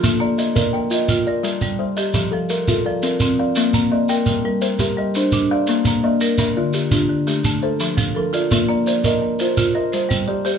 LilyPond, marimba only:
<<
  \new Staff \with { instrumentName = "Marimba" } { \time 12/8 \key bes \major \tempo 4. = 113 <f' a'>4 r8 d''4 ees''4 bes'4. r4 | g'4 r8 a'4 bes'4 d''4. d''4 | bes'4 r8 bes'4 c''4 d''4. d''4 | bes'4 r8 f'4 g'4 a'4. a'4 |
f'4 d''8 ees''4 c''4 bes'8 c''4 g'4 | }
  \new Staff \with { instrumentName = "Marimba" } { \time 12/8 \key bes \major r8 bes4 r8 bes4 f'8 r4 g4 g'8~ | g'8 f4 r8 f4 c'8 r4 bes4 bes'8~ | bes'8 g4 r8 g4 d'8 r4 bes4 bes'8~ | bes'8 d4 r8 d4 a8 r4 f4 f'8~ |
f'8 bes4 r8 bes4 f'8 r4 g4 g'8 | }
>>